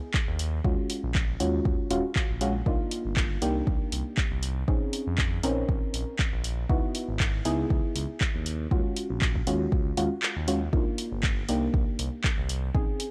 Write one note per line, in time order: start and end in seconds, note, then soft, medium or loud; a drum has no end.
0.00 0.38 B3 medium
0.00 0.38 D#4 medium
0.00 0.38 E4 medium
0.00 0.38 G#4 loud
0.14 kick loud
0.14 clap loud
0.28 0.60 D#2 loud
0.39 open hi-hat medium
0.64 0.75 D#2 loud
0.64 1.37 G#3 medium
0.64 1.37 C#4 medium
0.64 1.37 F4 medium
0.64 1.37 F#4 medium
0.64 kick loud
0.90 open hi-hat loud
1.03 1.36 A#1 medium
1.15 kick loud
1.15 clap loud
1.40 1.60 D#2 medium
1.40 1.88 G#3 medium
1.40 1.88 C#4 medium
1.40 1.88 F4 medium
1.40 1.88 F#4 loud
1.40 open hi-hat medium
1.65 1.76 D#2 medium
1.65 kick loud
1.91 2.01 D#1 medium
1.91 2.02 G#3 loud
1.91 2.02 C#4 medium
1.91 2.02 F4 medium
1.91 2.02 F#4 loud
1.91 open hi-hat loud
2.16 kick loud
2.16 clap loud
2.30 2.62 A#1 medium
2.41 2.53 G#3 medium
2.41 2.53 C#4 medium
2.41 2.53 F4 medium
2.41 2.53 F#4 medium
2.41 open hi-hat medium
2.66 2.77 C2 loud
2.66 3.39 A#3 medium
2.66 3.39 D4 medium
2.66 3.39 D#4 medium
2.66 3.39 F4 medium
2.66 kick loud
2.91 open hi-hat loud
3.05 3.38 G1 medium
3.17 kick loud
3.17 clap loud
3.42 3.62 C2 medium
3.42 4.65 A#3 medium
3.42 4.65 D4 medium
3.42 4.65 D#4 medium
3.42 4.65 G4 loud
3.42 open hi-hat medium
3.67 3.78 C2 medium
3.67 kick loud
3.92 4.03 C2 medium
3.92 open hi-hat loud
4.17 kick loud
4.17 clap loud
4.31 4.64 C2 loud
4.43 open hi-hat medium
4.68 4.78 A#1 loud
4.68 5.41 C4 medium
4.68 5.41 C#4 medium
4.68 5.41 D#4 medium
4.68 5.41 G#4 medium
4.68 kick loud
4.93 open hi-hat loud
5.07 5.39 F2 medium
5.18 kick loud
5.18 clap loud
5.43 5.63 A#1 medium
5.43 6.67 C4 medium
5.43 6.67 C#4 medium
5.43 6.67 D#4 medium
5.43 6.67 A#4 loud
5.43 open hi-hat medium
5.69 5.79 A#1 medium
5.69 kick loud
5.94 6.04 A#1 medium
5.94 open hi-hat loud
6.19 kick loud
6.19 clap loud
6.33 6.65 A#1 loud
6.44 open hi-hat medium
6.70 6.80 C#2 loud
6.70 7.42 B3 medium
6.70 7.42 D#4 medium
6.70 7.42 E4 medium
6.70 7.42 F#4 medium
6.70 kick loud
6.95 open hi-hat medium
7.09 7.41 G#1 medium
7.20 kick loud
7.20 clap loud
7.45 7.65 C#2 medium
7.45 8.45 B3 medium
7.45 8.45 D#4 medium
7.45 8.45 E4 medium
7.45 8.45 G#4 loud
7.45 open hi-hat medium
7.70 7.81 C#2 medium
7.70 kick loud
7.96 8.06 C#2 medium
7.96 open hi-hat medium
8.21 kick loud
8.21 clap loud
8.35 8.67 D#2 loud
8.46 open hi-hat medium
8.71 8.82 D#2 loud
8.71 9.44 G#3 medium
8.71 9.44 C#4 medium
8.71 9.44 F4 medium
8.71 9.44 F#4 medium
8.71 kick loud
8.96 open hi-hat loud
9.10 9.43 A#1 medium
9.22 kick loud
9.22 clap loud
9.35 kick medium
9.47 9.67 D#2 medium
9.47 9.95 G#3 medium
9.47 9.95 C#4 medium
9.47 9.95 F4 medium
9.47 9.95 F#4 medium
9.47 open hi-hat medium
9.72 9.92 C#2 loud
9.72 kick loud
9.97 10.08 D#2 medium
9.97 10.09 G#3 loud
9.97 10.09 C#4 medium
9.97 10.09 F4 medium
9.97 10.09 F#4 loud
9.97 open hi-hat loud
10.22 clap loud
10.36 10.69 D#2 medium
10.48 10.60 G#3 medium
10.48 10.60 C#4 medium
10.48 10.60 F4 medium
10.48 10.60 F#4 medium
10.48 open hi-hat medium
10.73 10.83 C2 loud
10.73 11.46 A#3 medium
10.73 11.46 D4 medium
10.73 11.46 D#4 medium
10.73 11.46 F4 medium
10.73 kick loud
10.98 open hi-hat loud
11.12 11.44 G1 medium
11.23 kick loud
11.23 clap loud
11.48 11.68 C2 medium
11.48 12.72 A#3 medium
11.48 12.72 D4 medium
11.48 12.72 D#4 medium
11.48 12.72 G4 loud
11.48 open hi-hat medium
11.74 11.84 C2 medium
11.74 kick loud
11.99 12.09 C2 medium
11.99 open hi-hat loud
12.24 kick loud
12.24 clap loud
12.38 12.70 C2 loud
12.49 open hi-hat medium
12.75 12.85 A#1 loud
12.75 13.11 C4 medium
12.75 13.11 C#4 medium
12.75 13.11 D#4 medium
12.75 13.11 G#4 medium
12.75 kick loud
13.00 open hi-hat loud